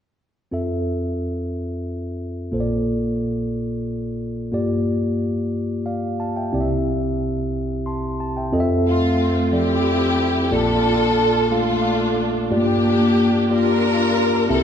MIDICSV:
0, 0, Header, 1, 3, 480
1, 0, Start_track
1, 0, Key_signature, -1, "major"
1, 0, Tempo, 665188
1, 379, Time_signature, 6, 3, 24, 8
1, 10558, End_track
2, 0, Start_track
2, 0, Title_t, "Tine electric piano"
2, 0, Program_c, 0, 4
2, 372, Note_on_c, 0, 60, 46
2, 376, Note_on_c, 0, 65, 42
2, 378, Note_on_c, 0, 41, 43
2, 382, Note_on_c, 0, 69, 44
2, 387, Note_on_c, 0, 76, 48
2, 506, Control_c, 0, 64, 127
2, 1792, Note_off_c, 0, 60, 0
2, 1794, Note_off_c, 0, 65, 0
2, 1795, Note_off_c, 0, 41, 0
2, 1797, Note_off_c, 0, 69, 0
2, 1800, Note_off_c, 0, 76, 0
2, 1816, Note_on_c, 0, 58, 52
2, 1822, Note_on_c, 0, 65, 40
2, 1824, Note_on_c, 0, 34, 45
2, 1824, Note_on_c, 0, 46, 47
2, 1826, Note_on_c, 0, 69, 44
2, 1833, Note_on_c, 0, 72, 42
2, 1834, Control_c, 0, 64, 0
2, 1876, Note_off_c, 0, 72, 0
2, 1878, Note_on_c, 0, 74, 51
2, 1944, Control_c, 0, 64, 127
2, 3235, Note_off_c, 0, 58, 0
2, 3238, Note_off_c, 0, 65, 0
2, 3239, Note_off_c, 0, 34, 0
2, 3239, Note_off_c, 0, 46, 0
2, 3240, Note_off_c, 0, 69, 0
2, 3262, Note_on_c, 0, 58, 51
2, 3266, Note_off_c, 0, 74, 0
2, 3267, Note_on_c, 0, 65, 46
2, 3272, Note_on_c, 0, 43, 49
2, 3273, Note_on_c, 0, 67, 48
2, 3277, Note_on_c, 0, 74, 58
2, 3278, Control_c, 0, 64, 0
2, 3381, Control_c, 0, 64, 127
2, 3979, Note_off_c, 0, 74, 0
2, 4227, Note_on_c, 0, 77, 46
2, 4233, Note_on_c, 0, 74, 34
2, 4456, Note_off_c, 0, 77, 0
2, 4459, Note_off_c, 0, 74, 0
2, 4472, Note_on_c, 0, 81, 49
2, 4478, Note_on_c, 0, 77, 36
2, 4585, Note_off_c, 0, 81, 0
2, 4588, Note_off_c, 0, 77, 0
2, 4593, Note_on_c, 0, 79, 45
2, 4597, Note_on_c, 0, 76, 36
2, 4677, Note_off_c, 0, 58, 0
2, 4680, Note_off_c, 0, 65, 0
2, 4682, Note_off_c, 0, 43, 0
2, 4683, Note_off_c, 0, 67, 0
2, 4707, Note_on_c, 0, 60, 54
2, 4711, Note_on_c, 0, 64, 51
2, 4712, Note_on_c, 0, 48, 53
2, 4715, Note_on_c, 0, 36, 54
2, 4717, Note_on_c, 0, 67, 47
2, 4719, Control_c, 0, 64, 0
2, 4722, Note_on_c, 0, 74, 50
2, 4760, Note_off_c, 0, 76, 0
2, 4762, Note_off_c, 0, 74, 0
2, 4769, Note_on_c, 0, 76, 59
2, 4819, Note_off_c, 0, 79, 0
2, 4864, Control_c, 0, 64, 127
2, 5673, Note_on_c, 0, 84, 45
2, 5680, Note_off_c, 0, 76, 0
2, 5680, Note_on_c, 0, 81, 35
2, 5899, Note_off_c, 0, 84, 0
2, 5902, Note_off_c, 0, 81, 0
2, 5919, Note_on_c, 0, 81, 51
2, 6028, Note_off_c, 0, 81, 0
2, 6039, Note_on_c, 0, 79, 42
2, 6045, Note_on_c, 0, 76, 41
2, 6119, Note_off_c, 0, 60, 0
2, 6120, Note_off_c, 0, 64, 0
2, 6121, Note_off_c, 0, 48, 0
2, 6122, Note_off_c, 0, 36, 0
2, 6124, Note_off_c, 0, 67, 0
2, 6151, Note_on_c, 0, 60, 73
2, 6153, Note_on_c, 0, 65, 59
2, 6154, Note_on_c, 0, 41, 60
2, 6157, Note_on_c, 0, 69, 65
2, 6158, Control_c, 0, 64, 0
2, 6159, Note_on_c, 0, 75, 59
2, 6198, Note_off_c, 0, 76, 0
2, 6200, Note_off_c, 0, 75, 0
2, 6207, Note_on_c, 0, 76, 79
2, 6262, Note_off_c, 0, 79, 0
2, 6279, Control_c, 0, 64, 127
2, 6635, Note_off_c, 0, 60, 0
2, 6636, Note_off_c, 0, 65, 0
2, 6638, Note_off_c, 0, 69, 0
2, 6663, Note_off_c, 0, 76, 0
2, 6869, Note_on_c, 0, 60, 47
2, 6872, Note_on_c, 0, 53, 42
2, 6876, Note_on_c, 0, 69, 42
2, 6878, Note_on_c, 0, 74, 53
2, 7353, Note_off_c, 0, 60, 0
2, 7355, Note_off_c, 0, 53, 0
2, 7356, Note_off_c, 0, 69, 0
2, 7358, Note_off_c, 0, 74, 0
2, 7560, Note_off_c, 0, 41, 0
2, 7586, Note_on_c, 0, 58, 59
2, 7587, Note_on_c, 0, 46, 49
2, 7588, Note_on_c, 0, 34, 46
2, 7588, Note_on_c, 0, 65, 56
2, 7590, Note_on_c, 0, 69, 58
2, 7593, Note_on_c, 0, 74, 63
2, 7595, Control_c, 0, 64, 0
2, 7717, Control_c, 0, 64, 127
2, 8070, Note_off_c, 0, 58, 0
2, 8071, Note_off_c, 0, 65, 0
2, 8073, Note_off_c, 0, 69, 0
2, 8074, Note_off_c, 0, 74, 0
2, 8306, Note_on_c, 0, 57, 52
2, 8309, Note_on_c, 0, 65, 48
2, 8311, Note_on_c, 0, 69, 47
2, 8312, Note_on_c, 0, 77, 56
2, 8789, Note_off_c, 0, 57, 0
2, 8791, Note_off_c, 0, 65, 0
2, 8792, Note_off_c, 0, 69, 0
2, 8792, Note_off_c, 0, 77, 0
2, 8993, Note_off_c, 0, 46, 0
2, 8994, Note_off_c, 0, 34, 0
2, 9024, Note_on_c, 0, 57, 51
2, 9026, Note_on_c, 0, 65, 57
2, 9026, Note_on_c, 0, 67, 57
2, 9028, Note_on_c, 0, 43, 51
2, 9031, Control_c, 0, 64, 0
2, 9032, Note_on_c, 0, 74, 68
2, 9070, Note_off_c, 0, 57, 0
2, 9071, Note_on_c, 0, 58, 62
2, 9170, Control_c, 0, 64, 127
2, 9508, Note_off_c, 0, 65, 0
2, 9508, Note_off_c, 0, 67, 0
2, 9511, Note_off_c, 0, 74, 0
2, 9530, Note_off_c, 0, 58, 0
2, 9743, Note_on_c, 0, 58, 53
2, 9745, Note_on_c, 0, 65, 48
2, 9748, Note_on_c, 0, 67, 47
2, 9750, Note_on_c, 0, 74, 58
2, 10225, Note_off_c, 0, 58, 0
2, 10226, Note_off_c, 0, 65, 0
2, 10228, Note_off_c, 0, 67, 0
2, 10229, Note_off_c, 0, 74, 0
2, 10431, Note_off_c, 0, 43, 0
2, 10455, Note_on_c, 0, 60, 63
2, 10459, Note_on_c, 0, 64, 58
2, 10460, Note_on_c, 0, 36, 53
2, 10460, Note_on_c, 0, 48, 50
2, 10461, Note_on_c, 0, 67, 55
2, 10463, Note_on_c, 0, 76, 66
2, 10467, Control_c, 0, 64, 0
2, 10558, Note_off_c, 0, 36, 0
2, 10558, Note_off_c, 0, 48, 0
2, 10558, Note_off_c, 0, 60, 0
2, 10558, Note_off_c, 0, 64, 0
2, 10558, Note_off_c, 0, 67, 0
2, 10558, Note_off_c, 0, 76, 0
2, 10558, End_track
3, 0, Start_track
3, 0, Title_t, "String section"
3, 0, Program_c, 1, 48
3, 6403, Note_on_c, 1, 57, 46
3, 6405, Note_on_c, 1, 60, 45
3, 6406, Note_on_c, 1, 65, 66
3, 6847, Note_off_c, 1, 65, 0
3, 6876, Note_off_c, 1, 60, 0
3, 6884, Note_on_c, 1, 60, 53
3, 6884, Note_on_c, 1, 64, 54
3, 6885, Note_on_c, 1, 67, 79
3, 7085, Note_off_c, 1, 57, 0
3, 7565, Note_off_c, 1, 60, 0
3, 7565, Note_off_c, 1, 64, 0
3, 7594, Note_off_c, 1, 67, 0
3, 7604, Note_on_c, 1, 69, 75
3, 7607, Note_on_c, 1, 65, 56
3, 7609, Note_on_c, 1, 62, 61
3, 8285, Note_off_c, 1, 65, 0
3, 8286, Note_off_c, 1, 62, 0
3, 8313, Note_off_c, 1, 69, 0
3, 8318, Note_on_c, 1, 65, 76
3, 8322, Note_on_c, 1, 57, 58
3, 8323, Note_on_c, 1, 62, 55
3, 8849, Note_off_c, 1, 65, 0
3, 9002, Note_off_c, 1, 57, 0
3, 9002, Note_off_c, 1, 62, 0
3, 9031, Note_on_c, 1, 67, 80
3, 9033, Note_on_c, 1, 62, 61
3, 9034, Note_on_c, 1, 58, 62
3, 9715, Note_off_c, 1, 67, 0
3, 9716, Note_off_c, 1, 62, 0
3, 9717, Note_off_c, 1, 58, 0
3, 9755, Note_on_c, 1, 70, 94
3, 9756, Note_on_c, 1, 62, 66
3, 9759, Note_on_c, 1, 65, 69
3, 10436, Note_off_c, 1, 62, 0
3, 10436, Note_off_c, 1, 70, 0
3, 10437, Note_off_c, 1, 65, 0
3, 10471, Note_on_c, 1, 69, 91
3, 10475, Note_on_c, 1, 64, 64
3, 10478, Note_on_c, 1, 60, 58
3, 10558, Note_off_c, 1, 60, 0
3, 10558, Note_off_c, 1, 64, 0
3, 10558, Note_off_c, 1, 69, 0
3, 10558, End_track
0, 0, End_of_file